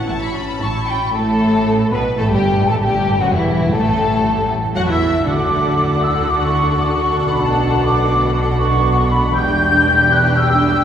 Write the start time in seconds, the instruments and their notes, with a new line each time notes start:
Already playing: clarinet E4
0.08 double bass section A1, cello section A2, viola section E4, violin section A5 C#6
0.22 violin section B5
0.34 viola section C#4, violin section A5
0.61 double bass section A1, cello section A2, viola section E4, violin section A5 C#6, flute section C#6
0.75 flute section B5
0.88 viola section C#4, violin section G5 A5
1.15 double bass section A1, cello section A2, viola section A3, french horn section A3, violin section A4, flute section A5
1.91 double bass section B1, cello section B2, french horn section B3, viola section B3, violin section B4, flute section B5
2.18 double bass section A1, cello section A2, viola section A3, french horn section A3, violin section A4, flute section A5
2.30 double bass section G1, cello section G2, viola section G3, french horn section G3, violin section G4, flute section G5
2.68 double bass section A1, cello section A2, viola section A3, french horn section A3, violin section A4, flute section A5
2.81 double bass section G1, cello section G2, viola section G3, french horn section G3, violin section G4, flute section G5
3.19 double bass section F#1, cello section F#2, french horn section F#3, viola section F#3, violin section F#4, flute section F#5
3.33 double bass section E1, cello section E2, viola section E3, french horn section E3, violin section E4, flute section E5
3.73 double bass section A1, cello section A2, french horn section A3, viola section A3, violin section A4, flute section A5
4.75 double bass section F#2, cello section F#3, french horn section F#4, viola section F#4, violin section F#5, flute section F#6
4.88 double bass section E2, cello section E3, viola section E4, french horn section E4, violin section E5, flute section E6
5.26 double bass section D2, timpani D3, cello section D3, french horn section A3 F#4, viola section D4, violin section A4 F#5, flute section D6
6.03 flute section E6
6.28 flute section D6
6.41 flute section C#6
6.80 flute section D6
6.92 flute section C#6
7.29 double bass section B1, cello section B2, flute section B5
7.42 flute section A5
7.83 flute section D6
8.59 flute section C#6
9.10 flute section B5
9.36 double bass section E1, cello section E2, french horn section G3 D4, viola section D4, violin section G4 G5, flute section G6
10.12 flute section F#6
10.38 french horn section G3 D4, flute section E6